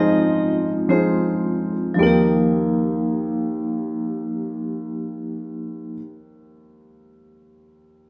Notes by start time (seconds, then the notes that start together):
Already playing: G#1 G#2 F3 G#3 C4 D#4 F4 G#4 C5 D#5
0.89 F3 G#3 C4 D#4 F4 G#4 C5
1.94 F3 D#4
1.99 D#2 A#3 G4 A#4
2.03 D#4 G4